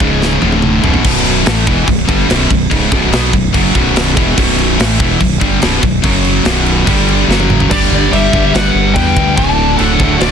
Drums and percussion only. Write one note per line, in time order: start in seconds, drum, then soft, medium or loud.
0.00 kick loud
0.22 snare medium
0.42 high tom medium
0.52 high tom medium
0.62 mid tom medium
0.84 floor tom medium
0.94 floor tom medium
1.04 kick loud
1.04 crash loud
1.04 crash medium
1.25 crash medium
1.46 snare loud
1.46 crash medium
1.67 kick loud
1.67 crash medium
1.87 kick medium
1.87 crash medium
2.09 kick loud
2.09 crash medium
2.30 snare loud
2.30 crash medium
2.51 kick medium
2.51 crash medium
2.71 kick loud
2.71 crash medium
2.92 kick loud
2.92 crash medium
3.12 snare loud
3.12 crash medium
3.33 kick medium
3.33 crash medium
3.54 kick loud
3.54 crash medium
3.75 kick loud
3.75 crash medium
3.96 snare loud
3.96 crash medium
4.17 kick loud
4.17 crash medium
4.38 kick loud
4.38 crash medium
4.58 crash medium
4.80 snare loud
4.80 crash medium
5.00 kick loud
5.20 kick medium
5.20 crash medium
5.41 kick loud
5.41 crash medium
5.62 snare loud
5.62 crash medium
5.83 kick medium
5.83 crash medium
6.04 kick loud
6.04 crash medium
6.25 crash medium
6.45 snare loud
6.45 crash medium
6.66 crash medium
6.87 kick loud
6.87 crash medium
7.08 crash medium
7.31 snare medium
7.40 high tom medium
7.50 mid tom medium
7.60 floor tom medium
7.71 kick loud
7.71 crash loud
7.71 crash medium
8.13 crash medium
8.33 kick medium
8.55 snare loud
8.55 crash medium
8.96 kick medium
8.96 crash medium
9.17 kick medium
9.37 kick loud
9.37 crash medium
9.79 crash medium
10.00 kick medium
10.20 snare loud
10.20 crash medium